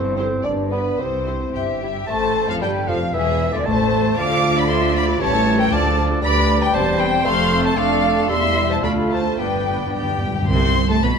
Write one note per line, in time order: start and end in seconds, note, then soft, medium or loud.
0.00 0.36 G1 medium
0.00 0.36 G2 medium
0.00 0.42 G2 medium
0.00 0.17 C4 medium
0.00 0.41 E4 medium
0.16 0.46 C4 medium
0.16 0.26 E4 soft
0.16 0.26 G4 soft
0.16 0.30 A4 medium
0.16 0.24 C5 medium
0.16 0.25 C5 soft
0.43 0.90 G1 medium
0.43 0.90 G2 medium
0.43 0.71 D4 medium
0.43 0.98 D4 soft
0.43 0.98 B4 soft
0.43 0.51 D5 medium
0.71 1.01 B3 medium
0.71 0.80 D4 soft
0.71 0.80 G4 soft
0.71 0.99 B4 medium
0.71 0.80 B4 soft
0.99 1.45 C2 medium
0.99 1.45 C3 soft
0.99 1.82 C4 medium
0.99 1.80 E4 soft
0.99 1.54 C5 soft
0.99 1.80 C5 soft
1.27 1.35 E4 soft
1.27 1.35 G4 soft
1.27 1.35 C5 soft
1.53 2.00 G1 soft
1.53 2.00 G2 soft
1.53 2.05 G4 medium
1.53 2.05 E5 medium
1.53 1.82 E5 medium
1.53 1.63 G5 soft
1.82 1.90 E4 soft
1.82 1.91 G4 soft
1.82 2.09 E5 medium
2.07 2.46 A1 medium
2.07 2.45 A2 medium
2.07 2.45 A3 medium
2.07 2.50 A3 medium
2.07 2.46 A3 medium
2.07 2.48 C5 medium
2.07 2.45 A5 medium
2.07 2.47 A5 medium
2.07 2.49 A5 medium
2.48 2.53 F2 medium
2.48 2.61 F3 medium
2.48 2.62 F3 medium
2.48 2.62 A4 medium
2.48 2.61 F5 medium
2.48 2.55 F5 medium
2.61 2.88 G1 medium
2.61 2.88 G2 medium
2.61 2.73 G3 medium
2.61 2.88 G3 medium
2.61 2.88 B4 medium
2.61 2.88 G5 medium
2.61 2.89 G5 medium
2.61 2.70 G5 medium
2.87 3.14 F1 medium
2.87 3.15 F2 medium
2.87 3.13 F3 medium
2.87 3.00 F3 medium
2.87 2.97 F3 medium
2.87 2.95 A4 medium
2.87 3.14 F5 medium
2.87 3.16 F5 medium
2.87 3.14 F5 medium
3.14 3.53 E1 medium
3.14 3.53 E2 medium
3.14 3.52 E3 medium
3.14 3.53 E3 medium
3.14 3.52 G#4 medium
3.14 3.53 E5 medium
3.14 3.54 E5 medium
3.14 3.53 E5 medium
3.52 3.66 D2 medium
3.52 3.58 D3 medium
3.52 3.67 D3 medium
3.52 3.66 D3 medium
3.52 3.58 F4 medium
3.52 3.67 D5 medium
3.52 3.66 D5 medium
3.52 3.67 D5 medium
3.65 4.18 A1 medium
3.65 4.18 A2 medium
3.65 4.16 A3 medium
3.65 4.17 A3 medium
3.65 4.16 C5 medium
3.65 4.16 A5 medium
3.65 4.17 A5 medium
4.17 5.16 D2 medium
4.17 5.16 D3 medium
4.17 5.16 F3 medium
4.17 5.16 A3 medium
4.17 4.30 A3 medium
4.17 4.30 F4 medium
4.17 5.17 F4 medium
4.17 5.16 D5 medium
4.17 4.56 F5 medium
4.17 4.56 D6 medium
4.17 4.56 D6 loud
4.31 4.43 D4 soft
4.31 4.43 A4 medium
4.43 4.56 A3 medium
4.43 4.56 F4 medium
4.56 4.69 D4 medium
4.56 4.69 A4 medium
4.56 4.69 D5 medium
4.56 4.62 B5 medium
4.56 4.70 B5 medium
4.69 4.81 A3 medium
4.69 4.81 F4 medium
4.69 4.95 E5 medium
4.69 4.94 C6 medium
4.69 4.95 C6 medium
4.82 4.95 D4 medium
4.82 4.95 A4 medium
4.95 5.08 A3 medium
4.95 5.08 F4 medium
4.95 5.21 D5 medium
4.95 5.20 B5 medium
4.95 5.04 B5 loud
5.08 5.21 D4 medium
5.08 5.21 A4 medium
5.19 5.71 A1 medium
5.19 5.71 A2 medium
5.19 5.73 E3 medium
5.19 5.70 G3 medium
5.19 5.71 C#4 medium
5.19 5.32 E4 medium
5.19 5.32 G4 medium
5.19 5.74 C#5 medium
5.19 5.58 C#5 medium
5.19 5.58 A5 medium
5.33 5.46 C#4 medium
5.33 5.46 A4 medium
5.47 5.59 E4 medium
5.47 5.59 G4 medium
5.58 5.72 C#4 medium
5.58 5.71 A4 medium
5.58 5.71 A#4 medium
5.58 5.71 G5 medium
5.58 5.72 G5 medium
5.71 6.21 D2 medium
5.71 6.21 F3 medium
5.71 6.22 F3 medium
5.71 5.83 A3 medium
5.71 6.74 D4 medium
5.71 5.84 F4 medium
5.71 5.97 D5 medium
5.71 6.22 D5 medium
5.71 5.97 A5 medium
5.85 5.97 D4 medium
5.85 5.97 A4 medium
5.97 6.10 A3 medium
5.97 6.10 F4 medium
6.10 6.22 D4 medium
6.10 6.23 A4 medium
6.21 6.70 D2 medium
6.21 7.25 G3 medium
6.21 6.70 G3 medium
6.21 6.70 D4 medium
6.21 6.71 B4 medium
6.21 6.58 D5 medium
6.21 6.70 D5 medium
6.21 6.58 B5 loud
6.21 6.59 B5 loud
6.61 6.66 B4 medium
6.61 6.74 G5 medium
6.72 7.25 E1 medium
6.72 7.25 E2 medium
6.72 7.26 G3 medium
6.72 7.76 C4 medium
6.72 7.24 C4 medium
6.72 6.81 C5 medium
6.72 7.25 C5 medium
6.72 7.26 C5 medium
6.72 6.99 A5 medium
6.72 7.00 A5 medium
6.98 7.06 B4 medium
6.98 7.25 G5 medium
6.98 7.26 G5 loud
7.24 7.76 F1 medium
7.24 7.76 F2 medium
7.24 8.27 A3 medium
7.24 7.76 A3 medium
7.24 7.76 C4 medium
7.24 7.76 A4 medium
7.24 7.79 C5 medium
7.24 7.63 F5 medium
7.24 7.64 C6 medium
7.24 7.64 C6 loud
7.64 7.77 C5 medium
7.64 7.76 A5 medium
7.64 7.78 A5 medium
7.76 8.29 F1 medium
7.76 8.29 F2 medium
7.76 8.28 A3 medium
7.76 8.29 D4 medium
7.76 8.30 D4 medium
7.76 8.29 A4 medium
7.76 8.29 D5 medium
7.76 8.29 F5 medium
7.76 8.30 F5 medium
8.29 8.80 E1 medium
8.29 8.80 E2 medium
8.29 8.79 G3 medium
8.29 8.83 G3 medium
8.29 8.85 G3 medium
8.29 8.83 E4 medium
8.29 8.79 G4 medium
8.29 8.70 E5 medium
8.29 8.85 E5 medium
8.29 8.69 C6 medium
8.70 8.83 C5 medium
8.70 8.83 A5 medium
8.70 8.77 A5 medium
8.82 9.39 D2 medium
8.82 9.39 A3 medium
8.82 9.38 A3 medium
8.82 9.39 A3 medium
8.82 9.38 F4 medium
8.82 8.91 D5 medium
8.82 9.23 F5 medium
8.82 9.11 B5 medium
8.82 8.92 B5 medium
9.10 9.38 C5 medium
9.10 9.39 A5 medium
9.38 10.27 G1 medium
9.38 10.27 G2 medium
9.38 9.46 G2 soft
9.38 10.21 B3 soft
9.38 10.29 B3 medium
9.38 10.22 D4 soft
9.38 10.29 D4 medium
9.38 9.94 B4 medium
9.38 10.21 D5 soft
9.38 9.93 G5 medium
9.38 9.94 G5 medium
9.47 9.53 G2 soft
9.55 9.61 G2 soft
9.63 9.69 G2 soft
9.70 9.77 G2 soft
9.78 9.85 G2 soft
9.86 9.93 G2 soft
9.94 10.01 G2 medium
9.94 10.46 G4 medium
9.94 10.46 G5 medium
10.02 10.09 G2 medium
10.10 10.17 G2 medium
10.18 10.24 G2 medium
10.26 10.32 G2 medium
10.34 10.41 G2 medium
10.42 10.49 G2 medium
10.49 10.87 C2 medium
10.49 10.87 C3 medium
10.49 10.87 C4 medium
10.49 10.89 C5 medium
10.49 10.90 C6 medium
10.89 11.02 A2 medium
10.89 10.95 A3 medium
10.89 10.94 A4 medium
10.89 11.03 A5 medium
11.02 11.11 B1 medium
11.02 11.11 B2 medium
11.02 11.11 B3 medium
11.02 11.10 B4 medium
11.02 11.19 B5 medium